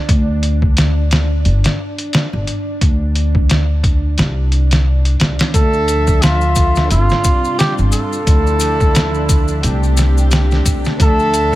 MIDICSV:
0, 0, Header, 1, 6, 480
1, 0, Start_track
1, 0, Key_signature, -1, "minor"
1, 0, Tempo, 681818
1, 61, Time_signature, 4, 2, 24, 8
1, 8133, End_track
2, 0, Start_track
2, 0, Title_t, "Muted trumpet"
2, 0, Program_c, 0, 59
2, 3905, Note_on_c, 0, 69, 113
2, 4381, Note_on_c, 0, 65, 90
2, 4392, Note_off_c, 0, 69, 0
2, 4857, Note_off_c, 0, 65, 0
2, 4861, Note_on_c, 0, 65, 93
2, 5313, Note_off_c, 0, 65, 0
2, 5341, Note_on_c, 0, 67, 93
2, 5449, Note_off_c, 0, 67, 0
2, 5579, Note_on_c, 0, 69, 96
2, 6992, Note_off_c, 0, 69, 0
2, 7757, Note_on_c, 0, 69, 113
2, 8133, Note_off_c, 0, 69, 0
2, 8133, End_track
3, 0, Start_track
3, 0, Title_t, "Synth drone"
3, 0, Program_c, 1, 95
3, 0, Note_on_c, 1, 62, 83
3, 3892, Note_off_c, 1, 62, 0
3, 3901, Note_on_c, 1, 62, 83
3, 8133, Note_off_c, 1, 62, 0
3, 8133, End_track
4, 0, Start_track
4, 0, Title_t, "String section"
4, 0, Program_c, 2, 48
4, 3900, Note_on_c, 2, 76, 69
4, 3901, Note_on_c, 2, 50, 69
4, 3901, Note_on_c, 2, 53, 63
4, 4851, Note_off_c, 2, 76, 0
4, 4852, Note_off_c, 2, 50, 0
4, 4852, Note_off_c, 2, 53, 0
4, 4858, Note_on_c, 2, 48, 63
4, 4858, Note_on_c, 2, 55, 60
4, 4859, Note_on_c, 2, 65, 72
4, 5810, Note_off_c, 2, 48, 0
4, 5810, Note_off_c, 2, 55, 0
4, 5811, Note_off_c, 2, 65, 0
4, 5819, Note_on_c, 2, 53, 61
4, 5821, Note_on_c, 2, 50, 72
4, 5822, Note_on_c, 2, 64, 72
4, 6771, Note_off_c, 2, 53, 0
4, 6772, Note_off_c, 2, 50, 0
4, 6772, Note_off_c, 2, 64, 0
4, 6785, Note_on_c, 2, 48, 71
4, 6785, Note_on_c, 2, 57, 63
4, 6785, Note_on_c, 2, 67, 76
4, 7734, Note_off_c, 2, 48, 0
4, 7734, Note_off_c, 2, 57, 0
4, 7734, Note_off_c, 2, 67, 0
4, 7742, Note_on_c, 2, 76, 72
4, 7743, Note_on_c, 2, 50, 70
4, 7745, Note_on_c, 2, 53, 58
4, 8133, Note_off_c, 2, 50, 0
4, 8133, Note_off_c, 2, 53, 0
4, 8133, Note_off_c, 2, 76, 0
4, 8133, End_track
5, 0, Start_track
5, 0, Title_t, "Upright bass"
5, 0, Program_c, 3, 32
5, 63, Note_on_c, 3, 38, 94
5, 1025, Note_on_c, 3, 31, 91
5, 1036, Note_off_c, 3, 38, 0
5, 1144, Note_off_c, 3, 31, 0
5, 1642, Note_on_c, 3, 31, 91
5, 1731, Note_off_c, 3, 31, 0
5, 1983, Note_on_c, 3, 38, 91
5, 2922, Note_off_c, 3, 38, 0
5, 2946, Note_on_c, 3, 36, 90
5, 3644, Note_off_c, 3, 36, 0
5, 3664, Note_on_c, 3, 36, 78
5, 3783, Note_off_c, 3, 36, 0
5, 3902, Note_on_c, 3, 38, 95
5, 4867, Note_on_c, 3, 31, 90
5, 4878, Note_off_c, 3, 38, 0
5, 4985, Note_off_c, 3, 31, 0
5, 5482, Note_on_c, 3, 31, 93
5, 5571, Note_off_c, 3, 31, 0
5, 5823, Note_on_c, 3, 38, 93
5, 6763, Note_off_c, 3, 38, 0
5, 6787, Note_on_c, 3, 36, 91
5, 7484, Note_off_c, 3, 36, 0
5, 7503, Note_on_c, 3, 36, 78
5, 7623, Note_off_c, 3, 36, 0
5, 7744, Note_on_c, 3, 38, 95
5, 8133, Note_off_c, 3, 38, 0
5, 8133, End_track
6, 0, Start_track
6, 0, Title_t, "Drums"
6, 61, Note_on_c, 9, 36, 103
6, 62, Note_on_c, 9, 42, 85
6, 131, Note_off_c, 9, 36, 0
6, 133, Note_off_c, 9, 42, 0
6, 302, Note_on_c, 9, 42, 69
6, 372, Note_off_c, 9, 42, 0
6, 438, Note_on_c, 9, 36, 89
6, 508, Note_off_c, 9, 36, 0
6, 541, Note_on_c, 9, 42, 84
6, 551, Note_on_c, 9, 38, 108
6, 611, Note_off_c, 9, 42, 0
6, 622, Note_off_c, 9, 38, 0
6, 782, Note_on_c, 9, 42, 75
6, 793, Note_on_c, 9, 38, 97
6, 853, Note_off_c, 9, 42, 0
6, 863, Note_off_c, 9, 38, 0
6, 1022, Note_on_c, 9, 42, 54
6, 1092, Note_off_c, 9, 42, 0
6, 1156, Note_on_c, 9, 42, 76
6, 1167, Note_on_c, 9, 38, 92
6, 1227, Note_off_c, 9, 42, 0
6, 1237, Note_off_c, 9, 38, 0
6, 1397, Note_on_c, 9, 42, 61
6, 1468, Note_off_c, 9, 42, 0
6, 1500, Note_on_c, 9, 42, 78
6, 1511, Note_on_c, 9, 38, 107
6, 1571, Note_off_c, 9, 42, 0
6, 1581, Note_off_c, 9, 38, 0
6, 1742, Note_on_c, 9, 42, 66
6, 1812, Note_off_c, 9, 42, 0
6, 1981, Note_on_c, 9, 36, 105
6, 1981, Note_on_c, 9, 42, 85
6, 2051, Note_off_c, 9, 36, 0
6, 2051, Note_off_c, 9, 42, 0
6, 2221, Note_on_c, 9, 42, 66
6, 2291, Note_off_c, 9, 42, 0
6, 2357, Note_on_c, 9, 36, 95
6, 2428, Note_off_c, 9, 36, 0
6, 2461, Note_on_c, 9, 42, 82
6, 2471, Note_on_c, 9, 38, 109
6, 2531, Note_off_c, 9, 42, 0
6, 2542, Note_off_c, 9, 38, 0
6, 2700, Note_on_c, 9, 36, 99
6, 2702, Note_on_c, 9, 42, 67
6, 2771, Note_off_c, 9, 36, 0
6, 2773, Note_off_c, 9, 42, 0
6, 2941, Note_on_c, 9, 42, 70
6, 2951, Note_on_c, 9, 38, 90
6, 3011, Note_off_c, 9, 42, 0
6, 3022, Note_off_c, 9, 38, 0
6, 3182, Note_on_c, 9, 42, 59
6, 3252, Note_off_c, 9, 42, 0
6, 3317, Note_on_c, 9, 42, 73
6, 3328, Note_on_c, 9, 38, 98
6, 3388, Note_off_c, 9, 42, 0
6, 3398, Note_off_c, 9, 38, 0
6, 3557, Note_on_c, 9, 42, 61
6, 3628, Note_off_c, 9, 42, 0
6, 3659, Note_on_c, 9, 42, 72
6, 3670, Note_on_c, 9, 38, 95
6, 3730, Note_off_c, 9, 42, 0
6, 3740, Note_off_c, 9, 38, 0
6, 3796, Note_on_c, 9, 42, 77
6, 3807, Note_on_c, 9, 38, 104
6, 3867, Note_off_c, 9, 42, 0
6, 3877, Note_off_c, 9, 38, 0
6, 3899, Note_on_c, 9, 36, 106
6, 3900, Note_on_c, 9, 42, 82
6, 3903, Note_on_c, 9, 82, 52
6, 3970, Note_off_c, 9, 36, 0
6, 3971, Note_off_c, 9, 42, 0
6, 3974, Note_off_c, 9, 82, 0
6, 4037, Note_on_c, 9, 82, 23
6, 4107, Note_off_c, 9, 82, 0
6, 4140, Note_on_c, 9, 42, 65
6, 4141, Note_on_c, 9, 82, 87
6, 4210, Note_off_c, 9, 42, 0
6, 4212, Note_off_c, 9, 82, 0
6, 4274, Note_on_c, 9, 82, 37
6, 4277, Note_on_c, 9, 36, 94
6, 4344, Note_off_c, 9, 82, 0
6, 4347, Note_off_c, 9, 36, 0
6, 4379, Note_on_c, 9, 42, 79
6, 4382, Note_on_c, 9, 82, 45
6, 4389, Note_on_c, 9, 38, 110
6, 4449, Note_off_c, 9, 42, 0
6, 4452, Note_off_c, 9, 82, 0
6, 4460, Note_off_c, 9, 38, 0
6, 4514, Note_on_c, 9, 82, 25
6, 4584, Note_off_c, 9, 82, 0
6, 4614, Note_on_c, 9, 82, 85
6, 4620, Note_on_c, 9, 36, 90
6, 4620, Note_on_c, 9, 42, 68
6, 4685, Note_off_c, 9, 82, 0
6, 4690, Note_off_c, 9, 36, 0
6, 4690, Note_off_c, 9, 42, 0
6, 4755, Note_on_c, 9, 82, 35
6, 4768, Note_on_c, 9, 38, 48
6, 4825, Note_off_c, 9, 82, 0
6, 4839, Note_off_c, 9, 38, 0
6, 4861, Note_on_c, 9, 42, 75
6, 4864, Note_on_c, 9, 82, 44
6, 4932, Note_off_c, 9, 42, 0
6, 4934, Note_off_c, 9, 82, 0
6, 4994, Note_on_c, 9, 82, 26
6, 5010, Note_on_c, 9, 38, 48
6, 5064, Note_off_c, 9, 82, 0
6, 5081, Note_off_c, 9, 38, 0
6, 5098, Note_on_c, 9, 82, 97
6, 5101, Note_on_c, 9, 36, 94
6, 5102, Note_on_c, 9, 42, 66
6, 5169, Note_off_c, 9, 82, 0
6, 5171, Note_off_c, 9, 36, 0
6, 5172, Note_off_c, 9, 42, 0
6, 5242, Note_on_c, 9, 82, 38
6, 5312, Note_off_c, 9, 82, 0
6, 5343, Note_on_c, 9, 42, 80
6, 5344, Note_on_c, 9, 82, 42
6, 5353, Note_on_c, 9, 38, 105
6, 5413, Note_off_c, 9, 42, 0
6, 5415, Note_off_c, 9, 82, 0
6, 5424, Note_off_c, 9, 38, 0
6, 5477, Note_on_c, 9, 82, 23
6, 5548, Note_off_c, 9, 82, 0
6, 5576, Note_on_c, 9, 82, 83
6, 5582, Note_on_c, 9, 42, 66
6, 5647, Note_off_c, 9, 82, 0
6, 5652, Note_off_c, 9, 42, 0
6, 5721, Note_on_c, 9, 82, 32
6, 5792, Note_off_c, 9, 82, 0
6, 5821, Note_on_c, 9, 36, 113
6, 5822, Note_on_c, 9, 42, 87
6, 5822, Note_on_c, 9, 82, 53
6, 5892, Note_off_c, 9, 36, 0
6, 5893, Note_off_c, 9, 42, 0
6, 5893, Note_off_c, 9, 82, 0
6, 5960, Note_on_c, 9, 82, 24
6, 6030, Note_off_c, 9, 82, 0
6, 6053, Note_on_c, 9, 82, 94
6, 6062, Note_on_c, 9, 42, 63
6, 6123, Note_off_c, 9, 82, 0
6, 6132, Note_off_c, 9, 42, 0
6, 6198, Note_on_c, 9, 36, 90
6, 6198, Note_on_c, 9, 82, 38
6, 6268, Note_off_c, 9, 36, 0
6, 6268, Note_off_c, 9, 82, 0
6, 6300, Note_on_c, 9, 42, 82
6, 6301, Note_on_c, 9, 82, 49
6, 6311, Note_on_c, 9, 38, 107
6, 6370, Note_off_c, 9, 42, 0
6, 6372, Note_off_c, 9, 82, 0
6, 6381, Note_off_c, 9, 38, 0
6, 6438, Note_on_c, 9, 82, 26
6, 6508, Note_off_c, 9, 82, 0
6, 6541, Note_on_c, 9, 36, 98
6, 6541, Note_on_c, 9, 42, 64
6, 6541, Note_on_c, 9, 82, 97
6, 6611, Note_off_c, 9, 36, 0
6, 6611, Note_off_c, 9, 42, 0
6, 6612, Note_off_c, 9, 82, 0
6, 6673, Note_on_c, 9, 82, 39
6, 6744, Note_off_c, 9, 82, 0
6, 6782, Note_on_c, 9, 42, 80
6, 6786, Note_on_c, 9, 82, 45
6, 6852, Note_off_c, 9, 42, 0
6, 6857, Note_off_c, 9, 82, 0
6, 6923, Note_on_c, 9, 82, 24
6, 6993, Note_off_c, 9, 82, 0
6, 7018, Note_on_c, 9, 82, 85
6, 7022, Note_on_c, 9, 42, 66
6, 7033, Note_on_c, 9, 38, 46
6, 7089, Note_off_c, 9, 82, 0
6, 7092, Note_off_c, 9, 42, 0
6, 7103, Note_off_c, 9, 38, 0
6, 7164, Note_on_c, 9, 82, 43
6, 7235, Note_off_c, 9, 82, 0
6, 7258, Note_on_c, 9, 82, 50
6, 7261, Note_on_c, 9, 42, 76
6, 7272, Note_on_c, 9, 38, 105
6, 7329, Note_off_c, 9, 82, 0
6, 7332, Note_off_c, 9, 42, 0
6, 7342, Note_off_c, 9, 38, 0
6, 7401, Note_on_c, 9, 82, 26
6, 7409, Note_on_c, 9, 38, 40
6, 7471, Note_off_c, 9, 82, 0
6, 7480, Note_off_c, 9, 38, 0
6, 7501, Note_on_c, 9, 36, 91
6, 7502, Note_on_c, 9, 42, 66
6, 7503, Note_on_c, 9, 82, 96
6, 7572, Note_off_c, 9, 36, 0
6, 7572, Note_off_c, 9, 42, 0
6, 7574, Note_off_c, 9, 82, 0
6, 7635, Note_on_c, 9, 82, 35
6, 7649, Note_on_c, 9, 38, 44
6, 7706, Note_off_c, 9, 82, 0
6, 7719, Note_off_c, 9, 38, 0
6, 7742, Note_on_c, 9, 36, 112
6, 7742, Note_on_c, 9, 42, 84
6, 7745, Note_on_c, 9, 82, 48
6, 7812, Note_off_c, 9, 36, 0
6, 7813, Note_off_c, 9, 42, 0
6, 7816, Note_off_c, 9, 82, 0
6, 7880, Note_on_c, 9, 82, 25
6, 7950, Note_off_c, 9, 82, 0
6, 7981, Note_on_c, 9, 42, 65
6, 7983, Note_on_c, 9, 82, 86
6, 8051, Note_off_c, 9, 42, 0
6, 8053, Note_off_c, 9, 82, 0
6, 8133, End_track
0, 0, End_of_file